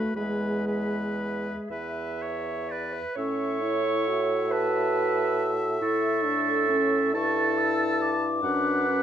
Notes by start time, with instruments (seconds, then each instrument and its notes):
Already playing: french horn A3, clarinet F#4, oboe B4, flute F5
0.16 bassoon E2, french horn G#3, clarinet G#4, oboe B4, flute E5
0.66 oboe B4, flute E5
1.70 bassoon E2, oboe B4, clarinet E5
2.21 oboe C#5, flute E5
2.69 oboe B4, clarinet D5
2.93 clarinet B4
3.16 bassoon A2, french horn C#4, clarinet C#5, oboe E5, flute C#6
3.63 french horn E4
4.07 french horn F#4
4.51 clarinet B4, flute A5
5.81 bassoon A2, french horn E4, clarinet A4, flute C#6
6.25 french horn D4
6.69 french horn C#4
7.14 bassoon G2, french horn E4, clarinet A4, oboe A5, flute C#6
7.58 flute E6
8.01 flute D6
8.43 bassoon F#2, french horn D4, clarinet B4, oboe F#5
8.87 french horn C#4